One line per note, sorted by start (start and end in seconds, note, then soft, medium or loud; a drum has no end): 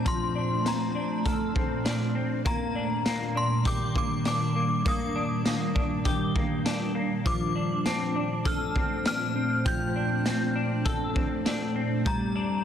0.00 7.22 A#2 medium
0.00 2.42 A3 medium
0.00 0.64 C4 medium
0.00 2.42 C4 medium
0.00 0.35 D4 medium
0.00 12.02 D4 medium
0.05 2.46 F3 medium
0.05 0.68 C6 loud
0.05 kick loud
0.05 closed hi-hat medium
0.35 0.95 D4 medium
0.65 1.54 C4 medium
0.65 1.23 A#5 medium
0.65 snare loud
0.65 closed hi-hat medium
0.65 tambourine medium
0.95 1.85 D4 medium
1.25 2.52 A4 medium
1.25 2.23 F6 medium
1.25 kick medium
1.25 closed hi-hat medium
1.55 2.14 C4 medium
1.55 kick medium
1.85 2.75 D4 medium
1.85 snare loud
1.85 closed hi-hat medium
1.85 tambourine medium
2.15 2.45 C4 medium
2.45 7.22 D#3 medium
2.45 7.22 G3 medium
2.45 3.05 A#3 medium
2.45 3.39 A#5 medium
2.45 kick loud
2.45 closed hi-hat medium
2.75 3.35 D4 medium
3.05 3.95 A#3 medium
3.05 snare loud
3.05 closed hi-hat medium
3.05 tambourine medium
3.35 4.25 D4 medium
3.35 3.65 C6 medium
3.65 6.04 G4 medium
3.65 3.97 D6 loud
3.65 kick medium
3.65 closed hi-hat medium
3.95 4.55 A#3 medium
3.95 4.26 D6 loud
3.95 kick medium
4.25 5.15 D4 medium
4.25 4.89 D6 loud
4.25 snare loud
4.25 closed hi-hat medium
4.25 tambourine medium
4.56 4.85 A#3 medium
4.85 5.45 A#3 medium
4.85 5.73 D#6 loud
4.85 kick loud
4.85 closed hi-hat medium
5.15 5.75 D4 medium
5.45 6.35 A#3 medium
5.45 snare medium
5.45 closed hi-hat medium
5.45 tambourine medium
5.75 6.65 D4 medium
5.75 kick medium
6.05 7.32 G4 medium
6.05 kick medium
6.05 closed hi-hat medium
6.35 6.95 A#3 medium
6.35 kick loud
6.65 7.55 D4 medium
6.65 snare loud
6.65 closed hi-hat medium
6.65 tambourine medium
6.95 7.85 A#3 medium
7.25 12.02 A#2 medium
7.25 9.65 F3 medium
7.25 12.02 A3 medium
7.25 12.02 C4 medium
7.25 8.50 D6 medium
7.25 kick loud
7.25 closed hi-hat medium
7.56 8.15 D4 medium
7.86 8.74 C4 medium
7.86 8.83 A5 medium
7.86 snare loud
7.86 closed hi-hat medium
7.86 tambourine medium
8.16 9.05 D4 medium
8.45 10.84 A4 medium
8.45 9.06 F6 medium
8.45 kick medium
8.45 closed hi-hat medium
8.75 9.35 C4 medium
8.75 kick medium
9.06 9.95 D4 medium
9.06 9.68 F6 loud
9.06 snare loud
9.06 closed hi-hat medium
9.06 tambourine medium
9.36 10.24 C4 medium
9.65 12.05 F3 medium
9.65 10.62 G5 medium
9.65 10.63 C6 medium
9.65 10.53 G6 loud
9.65 kick loud
9.65 closed hi-hat medium
9.96 10.55 D4 medium
10.26 11.14 C4 medium
10.26 snare medium
10.26 closed hi-hat medium
10.26 tambourine medium
10.56 11.45 D4 medium
10.85 12.12 A4 medium
10.85 kick medium
10.85 closed hi-hat medium
11.15 11.75 C4 medium
11.15 kick loud
11.46 12.35 D4 medium
11.46 snare loud
11.46 closed hi-hat medium
11.46 tambourine medium
11.76 12.12 C4 medium
12.05 12.64 A#2 medium
12.05 12.64 D#3 medium
12.05 12.64 G3 medium
12.05 12.64 D4 medium
12.05 12.64 A#5 medium
12.05 kick loud
12.05 closed hi-hat medium
12.36 12.64 D4 medium